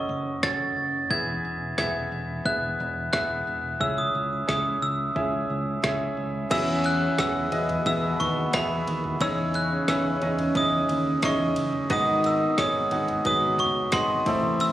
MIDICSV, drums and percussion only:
0, 0, Header, 1, 2, 480
1, 0, Start_track
1, 0, Key_signature, 4, "major"
1, 0, Tempo, 674916
1, 787, Time_signature, 4, 2, 24, 8
1, 10471, End_track
2, 0, Start_track
2, 0, Title_t, "Drums"
2, 306, Note_on_c, 9, 38, 98
2, 308, Note_on_c, 9, 36, 104
2, 377, Note_off_c, 9, 38, 0
2, 379, Note_off_c, 9, 36, 0
2, 786, Note_on_c, 9, 36, 97
2, 857, Note_off_c, 9, 36, 0
2, 1266, Note_on_c, 9, 38, 76
2, 1268, Note_on_c, 9, 36, 91
2, 1337, Note_off_c, 9, 38, 0
2, 1339, Note_off_c, 9, 36, 0
2, 1746, Note_on_c, 9, 36, 90
2, 1817, Note_off_c, 9, 36, 0
2, 2228, Note_on_c, 9, 36, 111
2, 2228, Note_on_c, 9, 38, 101
2, 2299, Note_off_c, 9, 38, 0
2, 2300, Note_off_c, 9, 36, 0
2, 2707, Note_on_c, 9, 36, 95
2, 2778, Note_off_c, 9, 36, 0
2, 3190, Note_on_c, 9, 38, 80
2, 3191, Note_on_c, 9, 36, 86
2, 3262, Note_off_c, 9, 36, 0
2, 3262, Note_off_c, 9, 38, 0
2, 3670, Note_on_c, 9, 36, 81
2, 3741, Note_off_c, 9, 36, 0
2, 4152, Note_on_c, 9, 38, 112
2, 4153, Note_on_c, 9, 36, 94
2, 4223, Note_off_c, 9, 38, 0
2, 4224, Note_off_c, 9, 36, 0
2, 4630, Note_on_c, 9, 49, 94
2, 4630, Note_on_c, 9, 51, 81
2, 4631, Note_on_c, 9, 36, 124
2, 4701, Note_off_c, 9, 49, 0
2, 4701, Note_off_c, 9, 51, 0
2, 4702, Note_off_c, 9, 36, 0
2, 4866, Note_on_c, 9, 51, 56
2, 4937, Note_off_c, 9, 51, 0
2, 5110, Note_on_c, 9, 38, 103
2, 5112, Note_on_c, 9, 36, 113
2, 5112, Note_on_c, 9, 51, 75
2, 5181, Note_off_c, 9, 38, 0
2, 5183, Note_off_c, 9, 36, 0
2, 5183, Note_off_c, 9, 51, 0
2, 5349, Note_on_c, 9, 43, 58
2, 5349, Note_on_c, 9, 51, 54
2, 5420, Note_off_c, 9, 43, 0
2, 5420, Note_off_c, 9, 51, 0
2, 5469, Note_on_c, 9, 43, 66
2, 5471, Note_on_c, 9, 51, 50
2, 5540, Note_off_c, 9, 43, 0
2, 5542, Note_off_c, 9, 51, 0
2, 5590, Note_on_c, 9, 36, 109
2, 5590, Note_on_c, 9, 51, 68
2, 5661, Note_off_c, 9, 36, 0
2, 5661, Note_off_c, 9, 51, 0
2, 5831, Note_on_c, 9, 43, 72
2, 5834, Note_on_c, 9, 51, 63
2, 5902, Note_off_c, 9, 43, 0
2, 5905, Note_off_c, 9, 51, 0
2, 6069, Note_on_c, 9, 51, 83
2, 6071, Note_on_c, 9, 38, 127
2, 6072, Note_on_c, 9, 36, 127
2, 6140, Note_off_c, 9, 51, 0
2, 6143, Note_off_c, 9, 36, 0
2, 6143, Note_off_c, 9, 38, 0
2, 6312, Note_on_c, 9, 51, 61
2, 6383, Note_off_c, 9, 51, 0
2, 6429, Note_on_c, 9, 43, 71
2, 6500, Note_off_c, 9, 43, 0
2, 6547, Note_on_c, 9, 51, 79
2, 6548, Note_on_c, 9, 36, 119
2, 6618, Note_off_c, 9, 51, 0
2, 6619, Note_off_c, 9, 36, 0
2, 6786, Note_on_c, 9, 51, 52
2, 6857, Note_off_c, 9, 51, 0
2, 7027, Note_on_c, 9, 38, 107
2, 7029, Note_on_c, 9, 36, 109
2, 7030, Note_on_c, 9, 51, 77
2, 7098, Note_off_c, 9, 38, 0
2, 7100, Note_off_c, 9, 36, 0
2, 7101, Note_off_c, 9, 51, 0
2, 7266, Note_on_c, 9, 51, 55
2, 7267, Note_on_c, 9, 43, 57
2, 7337, Note_off_c, 9, 51, 0
2, 7338, Note_off_c, 9, 43, 0
2, 7384, Note_on_c, 9, 43, 60
2, 7387, Note_on_c, 9, 51, 46
2, 7455, Note_off_c, 9, 43, 0
2, 7458, Note_off_c, 9, 51, 0
2, 7504, Note_on_c, 9, 51, 67
2, 7505, Note_on_c, 9, 36, 114
2, 7575, Note_off_c, 9, 51, 0
2, 7576, Note_off_c, 9, 36, 0
2, 7744, Note_on_c, 9, 43, 72
2, 7747, Note_on_c, 9, 51, 66
2, 7815, Note_off_c, 9, 43, 0
2, 7818, Note_off_c, 9, 51, 0
2, 7983, Note_on_c, 9, 51, 82
2, 7985, Note_on_c, 9, 38, 126
2, 7987, Note_on_c, 9, 36, 127
2, 8054, Note_off_c, 9, 51, 0
2, 8056, Note_off_c, 9, 38, 0
2, 8059, Note_off_c, 9, 36, 0
2, 8222, Note_on_c, 9, 51, 67
2, 8294, Note_off_c, 9, 51, 0
2, 8342, Note_on_c, 9, 43, 60
2, 8413, Note_off_c, 9, 43, 0
2, 8462, Note_on_c, 9, 51, 81
2, 8464, Note_on_c, 9, 36, 124
2, 8533, Note_off_c, 9, 51, 0
2, 8536, Note_off_c, 9, 36, 0
2, 8705, Note_on_c, 9, 51, 51
2, 8777, Note_off_c, 9, 51, 0
2, 8946, Note_on_c, 9, 38, 107
2, 8948, Note_on_c, 9, 36, 106
2, 8948, Note_on_c, 9, 51, 76
2, 9017, Note_off_c, 9, 38, 0
2, 9019, Note_off_c, 9, 36, 0
2, 9020, Note_off_c, 9, 51, 0
2, 9183, Note_on_c, 9, 51, 48
2, 9184, Note_on_c, 9, 43, 55
2, 9254, Note_off_c, 9, 51, 0
2, 9255, Note_off_c, 9, 43, 0
2, 9303, Note_on_c, 9, 43, 65
2, 9305, Note_on_c, 9, 51, 50
2, 9374, Note_off_c, 9, 43, 0
2, 9377, Note_off_c, 9, 51, 0
2, 9423, Note_on_c, 9, 51, 66
2, 9424, Note_on_c, 9, 36, 101
2, 9495, Note_off_c, 9, 36, 0
2, 9495, Note_off_c, 9, 51, 0
2, 9662, Note_on_c, 9, 43, 79
2, 9666, Note_on_c, 9, 51, 62
2, 9733, Note_off_c, 9, 43, 0
2, 9737, Note_off_c, 9, 51, 0
2, 9900, Note_on_c, 9, 51, 89
2, 9902, Note_on_c, 9, 38, 127
2, 9906, Note_on_c, 9, 36, 127
2, 9971, Note_off_c, 9, 51, 0
2, 9973, Note_off_c, 9, 38, 0
2, 9977, Note_off_c, 9, 36, 0
2, 10143, Note_on_c, 9, 36, 97
2, 10143, Note_on_c, 9, 51, 70
2, 10214, Note_off_c, 9, 51, 0
2, 10215, Note_off_c, 9, 36, 0
2, 10262, Note_on_c, 9, 43, 62
2, 10333, Note_off_c, 9, 43, 0
2, 10385, Note_on_c, 9, 51, 73
2, 10456, Note_off_c, 9, 51, 0
2, 10471, End_track
0, 0, End_of_file